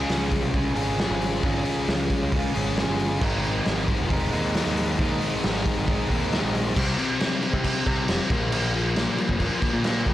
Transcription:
Already playing: overdriven electric guitar C#3 G#3 C#4 F4 G#4
0.09 picked electric bass C#2, snare, open hi-hat
0.31 kick, open hi-hat
0.43 picked electric bass C2
0.54 overdriven electric guitar C#3 G#3 C#4 F4 G#4, kick, open hi-hat
0.76 picked electric bass G#1, overdriven electric guitar C#3 G#3 C#4 F4 G#4, open hi-hat
0.97 overdriven electric guitar C#3 G#3 C#4 F4 G#4, snare, open hi-hat
1.10 picked electric bass G#1
1.21 open hi-hat
1.43 picked electric bass G#1, overdriven electric guitar C#3 G#3 C#4 F4 G#4, kick, open hi-hat
1.65 open hi-hat
1.88 picked electric bass C#2, snare, open hi-hat
2.10 kick, open hi-hat
2.22 picked electric bass C#2
2.32 overdriven electric guitar C#3 G#3 C#4 F4 G#4, kick, open hi-hat
2.54 picked electric bass G#1, overdriven electric guitar C#3 G#3 C#4 F4 G#4, open hi-hat
2.76 overdriven electric guitar C#3 G#3 C#4 F4 G#4, snare, open hi-hat
2.89 picked electric bass G1
2.99 open hi-hat
3.21 picked electric bass G#1, overdriven electric guitar G#2 D#3 G#3 C4, kick, crash
3.25 overdriven electric guitar D#4
3.44 open hi-hat
3.65 picked electric bass G#1, snare, open hi-hat
3.88 kick, open hi-hat
4.00 picked electric bass F1
4.10 overdriven electric guitar G#2 D#3 G#3 C4 D#4, kick, open hi-hat
4.32 picked electric bass D#2, overdriven electric guitar D#3 G#3 C4 D#4, open hi-hat
4.36 overdriven electric guitar G#2
4.54 overdriven electric guitar G#2 D#3 G#3 C4 D#4, snare, open hi-hat
4.67 picked electric bass D#2
4.77 open hi-hat
4.99 picked electric bass D#2, overdriven electric guitar G#2 D#3 G#3 C4, kick, open hi-hat
5.03 overdriven electric guitar D#4
5.21 open hi-hat
5.43 picked electric bass G#1, snare, open hi-hat
5.66 kick, open hi-hat
5.77 picked electric bass G#1
5.87 overdriven electric guitar G#2 D#3 G#3 C4 D#4, kick, open hi-hat
6.09 picked electric bass D#2, overdriven electric guitar D#3 G#3 C4 D#4, kick, open hi-hat
6.13 overdriven electric guitar G#2
6.32 overdriven electric guitar G#2 D#3 G#3 C4 D#4, snare, open hi-hat
6.43 picked electric bass A#1
6.55 open hi-hat
6.76 picked electric bass C2, overdriven electric guitar C3 G3 C4, kick, crash
6.98 overdriven electric guitar C3 G3 C4, crash
7.20 overdriven electric guitar C3 G3 C4, snare, crash
7.42 overdriven electric guitar C3 G3 C4, crash
7.53 picked electric bass C3, kick
7.64 overdriven electric guitar C3 G3 C4, kick, crash
7.87 picked electric bass C3, overdriven electric guitar C3 G3 C4, kick, crash
8.08 picked electric bass F1, overdriven electric guitar C3 G3 C4, snare, crash
8.30 picked electric bass A#1, overdriven electric guitar A#2 F3 A#3, kick, crash
8.52 overdriven electric guitar A#2 F3 A#3, crash
8.74 overdriven electric guitar A#2 F3 A#3, crash
8.96 overdriven electric guitar A#2 F3 A#3, snare, crash
9.17 overdriven electric guitar A#2 F3 A#3, crash
9.29 picked electric bass F1, kick
9.40 overdriven electric guitar A#2 F3 A#3, kick, crash
9.62 overdriven electric guitar A#2 F3 A#3, kick, crash
9.73 picked electric bass A#2
9.84 overdriven electric guitar A#2 F3 A#3, snare, crash
10.06 picked electric bass F1, overdriven electric guitar A#2 F3 A#3, kick, crash

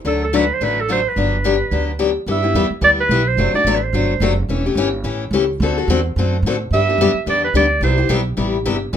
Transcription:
0.05 upright bass D2, steel-string acoustic guitar D3 F#3 A3 D4 F#4, clarinet A4
0.24 clarinet A4
0.33 steel-string acoustic guitar D3 F#3 A3 D4 F#4, clarinet B4
0.53 clarinet C5
0.61 upright bass A1, steel-string acoustic guitar D3 F#3 A3 D4 F#4, clarinet B4
0.81 clarinet A4
0.89 steel-string acoustic guitar D3 F#3 A3 D4 F#4, clarinet C5
1.08 clarinet B4
1.16 upright bass G1, steel-string acoustic guitar D3 F#3 B3 D4 G4
1.44 steel-string acoustic guitar D3 F#3 B3 D4 G4
1.71 upright bass D2, steel-string acoustic guitar D3 F#3 B3 D4 G4
1.99 steel-string acoustic guitar D3 F#3 B3 D4 G4
2.26 upright bass G2, steel-string acoustic guitar G3 B3 E4 G4
2.31 clarinet E5
2.42 steel-string acoustic guitar B3 E4 G4
2.54 upright bass E2, steel-string acoustic guitar G3 B3 E4 G4
2.70 muted upright bass stroke
2.81 upright bass D2, steel-string acoustic guitar G3 B3 E4 G4, clarinet D5
3.00 clarinet B4
3.09 upright bass B1, steel-string acoustic guitar G3 B3 E4 G4
3.28 clarinet C5
3.37 upright bass F#1, steel-string acoustic guitar C3 F#3 A3 D4 F#4
3.53 steel-string acoustic guitar A3 D4 F#4, clarinet D5, muted upright bass stroke
3.64 upright bass A1, steel-string acoustic guitar C3 F#3 A3 D4 F#4
3.75 clarinet B4
3.83 clarinet C5
3.93 upright bass G1, steel-string acoustic guitar C3 F#3 A3 D4 F#4
4.20 upright bass F#1, steel-string acoustic guitar C3 F#3 A3 D4 F#4
4.49 upright bass E1, steel-string acoustic guitar E3 A3 C#4 G4
4.66 steel-string acoustic guitar A3 C#4 G4
4.75 upright bass G1, steel-string acoustic guitar E3 A3 C#4 G4
5.04 upright bass A1, steel-string acoustic guitar E3 A3 C#4 G4
5.31 upright bass C#2, steel-string acoustic guitar E3 A3 C#4 G4
5.60 upright bass D2, steel-string acoustic guitar D3 A3 C4 F#4 A4
5.78 steel-string acoustic guitar C4 F#4 A4
5.88 upright bass E2, steel-string acoustic guitar D3 A3 C4 F#4 A4
6.16 upright bass F#2, steel-string acoustic guitar D3 A3 C4 F#4 A4
6.43 upright bass A2, steel-string acoustic guitar D3
6.47 steel-string acoustic guitar A3 C4 F#4 A4
6.71 upright bass G2, steel-string acoustic guitar D3 G3 B3 D4 G4, clarinet E5
6.89 steel-string acoustic guitar B3 D4 G4
6.98 upright bass F#2, steel-string acoustic guitar D3 G3 B3 D4 G4
7.14 muted upright bass stroke
7.26 upright bass E2, steel-string acoustic guitar D3 G3 B3 D4 G4, clarinet D5
7.44 clarinet B4
7.54 upright bass D2, steel-string acoustic guitar D3 G3 B3 D4 G4, clarinet D5
7.81 upright bass C2, steel-string acoustic guitar C3 G3 B3 E4 G4, clarinet C5
7.97 steel-string acoustic guitar B3 E4 G4
8.09 upright bass B1, steel-string acoustic guitar C3 G3 B3 E4 G4
8.37 upright bass A1, steel-string acoustic guitar C3 G3 B3 E4 G4
8.65 upright bass G1, steel-string acoustic guitar C3 G3 B3 E4 G4
8.93 upright bass E1, steel-string acoustic guitar E3 G3 B3 F#4

